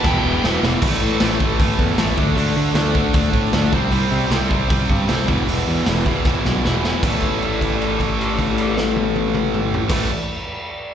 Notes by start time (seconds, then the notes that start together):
Already playing: E3 G3 B3 E4
0.03 E1 E2 B2 E3 G5, kick, snare
0.22 E1 E2 B2 E3
0.42 E1 E2 B2 E3, snare
0.62 E1 E2 B2 E3, snare
0.82 A1 A2 E3 A3, kick, crash
1.02 A2
1.20 A1 A2 E3 A3, snare, open hi-hat
1.39 A2 E3 A3, kick
1.58 A1 A2 E3 A3, kick, open hi-hat
1.79 E2, kick
1.97 A1 A2 E3 A3, snare, open hi-hat
2.17 D2 D3 A3 D4, kick
2.36 D2 D3 A3 D4, open hi-hat
2.56 D3
2.75 D2 D3 A3 D4, snare, open hi-hat
2.95 D3 A3 D4, kick
3.13 D2 D3 A3 D4, kick, open hi-hat
3.33 A2, kick
3.53 D2 D3 A3 D4, snare, open hi-hat
3.72 C2 C3 G3 C4, kick
3.91 C2 C3 G3 C4, open hi-hat
4.11 C3
4.30 C2 C3 G3 C4, snare, open hi-hat
4.50 C3 G3 C4, kick
4.69 C2 C3 G3 C4, kick, open hi-hat
4.90 G2, kick
5.08 C2 C3 G3 C4, snare, open hi-hat
5.27 E1 E2 B2 E3, kick
5.48 E1 E2 B2 E3, open hi-hat
5.69 E2
5.86 E1 E2 B2 E3, snare, open hi-hat
6.06 E2 B2 E3, kick
6.25 E1 E2 B2 E3, kick, snare
6.45 B1, snare
6.64 E1 E2 B2 E3, snare
6.83 E2 B2 E3, snare
7.01 A1 A2 E3 A3, kick, crash
7.22 kick, crash
7.42 crash
7.61 kick, crash
7.81 crash
8.00 kick, crash
8.21 crash
8.39 kick, crash
8.58 crash
8.78 snare
8.96 high tom
9.16 high tom
9.34 mid tom
9.54 mid tom
9.74 floor tom
9.88 A1 A2 E3 A3, kick, snare, crash